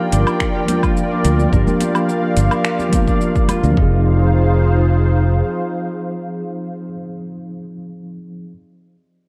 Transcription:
0.00 0.64 F3 medium
0.00 0.65 A#3 medium
0.00 0.66 D4 medium
0.00 0.19 D#4 medium
0.00 0.83 F4 loud
0.00 3.73 F4 medium
0.00 0.55 G4 medium
0.00 0.67 G4 medium
0.00 0.26 A#4 medium
0.00 3.73 A#4 medium
0.00 0.98 C5 medium
0.00 3.73 D5 medium
0.00 1.51 F5 medium
0.00 1.51 G5 medium
0.12 0.23 G1 medium
0.12 1.11 D4 medium
0.12 closed hi-hat loud
0.12 shaker medium
0.27 1.24 A#4 medium
0.27 low woodblock medium
0.27 shaker soft
0.40 finger snap medium
0.40 kick medium
0.40 shaker soft
0.55 1.80 G4 loud
0.65 1.48 F3 medium
0.65 1.49 A#3 medium
0.65 closed hi-hat loud
0.65 high conga medium
0.65 low conga medium
0.65 shaker medium
0.70 1.50 D4 medium
0.70 1.51 F4 medium
0.83 3.35 F4 loud
0.83 kick loud
0.83 low woodblock medium
0.83 shaker soft
0.97 shaker soft
1.11 2.36 D4 medium
1.24 1.46 D2 medium
1.24 1.52 A#4 medium
1.24 closed hi-hat medium
1.24 shaker medium
1.39 high conga medium
1.39 shaker soft
1.49 1.63 G1 loud
1.49 2.88 F3 medium
1.49 2.89 A#3 medium
1.49 2.51 A#4 medium
1.49 3.75 F5 medium
1.49 kick loud
1.53 2.90 D4 medium
1.53 2.91 G4 loud
1.53 shaker soft
1.67 low conga medium
1.67 shaker soft
1.81 2.79 G4 medium
1.81 closed hi-hat medium
1.81 high conga medium
1.81 shaker medium
1.95 low woodblock medium
1.95 shaker soft
2.09 3.75 F5 medium
2.09 shaker soft
2.37 2.48 G1 medium
2.37 3.07 D4 medium
2.37 closed hi-hat loud
2.37 shaker medium
2.51 4.63 A#4 medium
2.51 low woodblock medium
2.51 shaker soft
2.65 finger snap medium
2.65 shaker soft
2.79 5.15 G4 loud
2.79 high conga medium
2.79 shaker soft
2.89 3.70 F3 medium
2.89 3.73 A#3 medium
2.89 kick loud
2.89 closed hi-hat medium
2.89 low conga medium
2.93 3.74 D4 medium
2.93 3.75 F4 medium
2.93 high conga medium
2.93 shaker medium
3.08 3.35 D4 loud
3.08 kick medium
3.08 shaker soft
3.21 shaker soft
3.36 3.83 D4 medium
3.36 kick loud
3.36 shaker soft
3.48 6.01 F4 medium
3.48 closed hi-hat medium
3.48 low conga medium
3.48 low woodblock medium
3.48 shaker medium
3.63 3.74 D2 loud
3.63 high conga medium
3.63 shaker soft
3.71 6.87 F3 medium
3.71 6.90 C4 medium
3.77 5.41 F1 loud
3.77 6.77 D#4 medium
3.77 6.48 D#4 loud
3.77 6.94 D#4 medium
3.77 6.77 F4 medium
3.77 6.77 G#4 medium
3.77 6.77 C5 medium
3.77 6.77 F5 medium
3.77 kick loud
3.82 6.98 G#4 medium

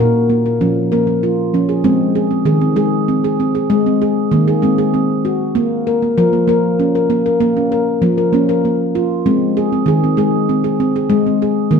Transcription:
0.00 0.61 A#2 medium
0.00 0.30 A#4 medium
0.30 0.45 A#3 medium
0.46 0.61 A#4 soft
0.61 0.90 F3 medium
0.61 0.92 C#4 medium
0.92 1.06 A#3 medium
0.92 1.07 A#4 medium
1.07 1.23 A#3 medium
1.23 1.54 F4 medium
1.54 1.83 F3 medium
1.54 1.70 C#4 medium
1.69 1.85 G#4 medium
1.84 2.43 G#3 medium
1.84 2.16 C4 medium
2.15 2.31 G#4 medium
2.31 2.47 C4 medium
2.45 2.77 D#3 medium
2.45 2.62 G#4 medium
2.61 2.77 C4 medium
2.76 3.66 G#3 medium
2.76 3.08 G#4 medium
3.08 3.24 C4 medium
3.24 3.40 G#4 medium
3.40 3.55 C4 medium
3.55 3.86 G#4 medium
3.70 4.28 G#3 loud
3.86 4.02 C4 medium
4.02 4.32 G#4 medium
4.31 4.63 D#3 medium
4.31 4.48 A#3 medium
4.48 4.63 G#4 medium
4.62 5.51 G#3 medium
4.62 4.79 C4 medium
4.78 4.94 G#4 medium
4.94 5.25 C4 medium
5.25 5.56 F#4 medium
5.55 6.01 A#3 medium
5.87 6.02 A#4 medium
6.02 6.18 A#3 medium
6.18 6.48 F3 loud
6.18 6.33 A#4 medium
6.33 6.46 A#3 medium
6.48 7.09 A#3 medium
6.48 6.79 A#4 medium
6.80 6.95 C#4 medium
6.95 7.10 A#4 medium
7.10 7.25 A#3 medium
7.26 7.56 A#4 medium
7.41 7.98 A#3 medium
7.57 7.72 C#4 medium
7.72 8.02 A#4 medium
8.02 8.33 F3 medium
8.02 8.18 A#3 medium
8.18 8.33 A#4 medium
8.33 8.64 A#3 medium
8.33 8.49 C#4 medium
8.49 8.64 A#4 medium
8.65 8.95 A#3 medium
8.95 9.26 F4 medium
9.26 9.83 G#3 medium
9.26 9.56 C4 medium
9.57 9.72 G#4 medium
9.72 9.87 C4 medium
9.86 10.17 D#3 medium
9.86 10.03 G#4 medium
10.04 10.18 C4 medium
10.17 11.06 G#3 medium
10.17 10.49 G#4 medium
10.49 10.64 C4 medium
10.64 10.80 G#4 medium
10.80 10.95 C4 medium
10.96 11.26 G#4 medium
11.10 11.68 G#3 loud
11.27 11.42 C4 medium
11.42 11.72 G#4 medium
11.71 11.80 D#3 loud
11.71 11.80 A#3 medium

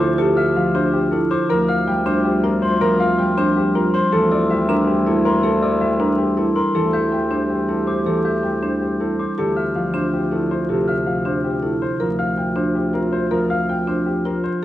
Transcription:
0.00 1.38 D2 medium
0.00 1.51 D3 medium
0.00 0.55 F3 medium
0.00 1.11 A3 medium
0.00 1.51 C#4 medium
0.00 1.27 F4 medium
0.00 0.24 C5 medium
0.00 0.24 D6 medium
0.18 0.43 G4 loud
0.18 0.43 A4 medium
0.37 0.62 E5 medium
0.37 0.62 F6 medium
0.56 1.49 F3 medium
0.56 0.80 F5 medium
0.75 0.99 D4 loud
0.75 0.99 C5 medium
0.93 1.18 G4 medium
1.11 1.51 A3 medium
1.11 1.37 E4 medium
1.11 1.36 A4 medium
1.31 1.55 C5 loud
1.31 1.55 D6 medium
1.50 4.01 D2 medium
1.50 2.80 F3 medium
1.50 3.90 F4 medium
1.50 1.74 A#4 loud
1.50 1.74 A#4 medium
1.69 1.93 F5 medium
1.69 1.93 F6 medium
1.88 3.18 G3 medium
1.88 2.12 G5 medium
2.06 2.30 D4 loud
2.06 2.30 C5 loud
2.25 2.49 G4 medium
2.43 3.74 C4 medium
2.43 2.68 F4 medium
2.43 2.68 A#4 medium
2.62 2.86 C5 loud
2.62 2.87 C6 medium
2.81 4.14 F3 medium
2.81 3.05 A#4 loud
3.00 3.24 F5 medium
3.00 3.24 F6 medium
3.18 4.49 G3 medium
3.18 3.43 G5 medium
3.37 3.62 D4 loud
3.37 3.62 C5 loud
3.57 3.81 G4 medium
3.75 6.76 C4 medium
3.75 3.99 F4 medium
3.75 3.99 A#4 medium
3.94 4.18 C5 loud
3.94 4.18 C6 medium
4.12 6.64 D2 medium
4.12 5.42 E3 medium
4.12 6.52 E4 medium
4.12 4.37 A4 medium
4.31 4.56 D5 medium
4.31 4.55 E6 medium
4.50 5.80 G3 medium
4.50 4.74 E5 medium
4.68 4.93 D4 loud
4.68 4.93 A#4 medium
4.87 5.11 G4 medium
5.06 6.36 A#3 medium
5.06 5.30 E4 medium
5.06 5.30 A4 medium
5.25 5.49 A#4 loud
5.25 5.49 C6 medium
5.43 6.74 E3 medium
5.43 5.68 A4 medium
5.62 5.87 D5 medium
5.62 5.87 E6 medium
5.81 7.11 G3 medium
5.81 6.05 E5 medium
6.00 6.24 D4 loud
6.00 6.24 A#4 medium
6.18 6.43 G4 medium
6.37 6.76 A#3 medium
6.37 6.62 E4 medium
6.37 6.62 A4 medium
6.56 6.80 A#4 medium
6.56 6.80 C6 medium
6.74 9.26 D2 medium
6.74 8.05 E3 medium
6.74 9.14 G4 medium
6.74 6.99 A4 medium
6.93 7.18 E5 medium
6.93 7.18 G6 medium
7.12 8.43 G3 medium
7.12 7.37 G5 medium
7.31 7.55 D4 medium
7.31 7.55 C5 medium
7.50 7.74 G4 medium
7.68 8.99 C4 medium
7.68 7.93 E4 medium
7.68 7.93 A4 medium
7.87 8.12 C5 medium
7.87 8.12 D6 medium
8.06 9.39 E3 medium
8.06 8.30 A4 medium
8.06 8.31 A4 medium
8.25 8.49 E5 medium
8.25 8.49 G6 medium
8.43 9.39 G3 medium
8.43 8.68 G5 medium
8.63 8.87 D4 medium
8.63 8.87 C5 medium
8.81 9.05 G4 medium
9.00 12.02 C4 medium
9.00 9.24 E4 medium
9.00 9.24 A4 medium
9.19 9.43 C5 medium
9.19 9.43 D6 medium
9.37 11.89 D2 medium
9.37 12.02 D3 medium
9.37 11.77 F4 medium
9.37 9.62 G4 medium
9.37 9.62 A4 medium
9.56 9.81 E5 medium
9.56 9.81 F6 medium
9.75 11.06 F3 medium
9.75 9.99 F5 medium
9.94 10.18 D4 medium
9.94 10.18 C5 medium
10.13 10.37 G4 medium
10.32 11.61 A3 medium
10.32 10.56 E4 medium
10.32 10.56 A4 medium
10.51 10.75 C5 medium
10.69 12.02 C3 medium
10.69 10.93 G4 medium
10.69 10.93 A4 medium
10.88 11.12 E5 medium
10.88 11.12 F6 medium
11.07 11.99 F3 medium
11.07 11.31 F5 medium
11.25 11.49 D4 medium
11.25 11.49 C5 medium
11.44 11.68 G4 medium
11.62 12.01 A3 medium
11.62 11.87 E4 medium
11.62 11.87 A4 medium
11.82 12.06 C5 medium
11.99 14.51 D2 medium
11.99 13.30 F3 medium
11.99 14.39 F4 medium
11.99 12.24 A#4 medium
12.19 12.43 F5 medium
12.19 12.43 F6 medium
12.37 12.62 G5 medium
12.56 12.80 D4 medium
12.56 12.80 C5 medium
12.75 12.99 G4 medium
12.94 14.24 C4 medium
12.94 13.18 F4 medium
12.94 13.18 A#4 medium
13.13 13.37 C5 medium
13.31 14.64 F3 medium
13.31 13.55 A#4 medium
13.50 13.74 F5 medium
13.50 13.74 F6 medium
13.69 13.93 G5 medium
13.87 14.12 D4 medium
13.87 14.12 C5 medium
14.06 14.30 G4 medium
14.25 14.65 C4 medium
14.25 14.49 F4 medium
14.25 14.49 A#4 medium
14.44 14.65 C5 medium

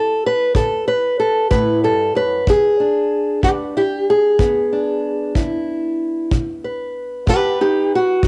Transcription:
0.00 0.17 A2 medium
0.00 0.24 A4 medium
0.26 0.55 B4 medium
0.55 1.13 A2 medium
0.55 0.87 A4 medium
0.55 kick medium
0.88 1.19 B4 medium
1.20 1.50 A4 medium
1.51 1.83 A2 medium
1.51 1.83 B4 loud
1.51 kick medium
1.84 2.15 G2 medium
1.84 2.16 A4 medium
2.15 2.47 F#2 medium
2.15 2.48 B4 medium
2.47 3.05 E2 medium
2.47 3.44 G#4 medium
2.47 kick medium
2.80 4.71 D4 soft
3.43 4.01 E2 medium
3.43 3.49 G#4 medium
3.43 3.76 B4 medium
3.43 kick medium
3.77 3.81 E4 medium
3.77 4.08 G4 medium
4.10 5.36 G#4 medium
4.39 4.97 E2 medium
4.39 7.61 B3 soft
4.39 kick medium
4.73 6.28 D4 soft
5.35 5.93 E2 medium
5.35 6.32 E4 soft
5.35 kick medium
6.31 6.89 B2 medium
6.31 kick medium
6.64 7.29 B4 soft
7.27 7.85 B2 medium
7.27 7.60 G4 medium
7.27 8.24 B4 medium
7.27 kick medium
7.61 7.92 D#4 medium
7.61 7.92 G4 medium
7.95 8.28 F#4 medium
8.23 8.28 B2 medium
8.23 8.28 D#4 soft
8.23 kick medium

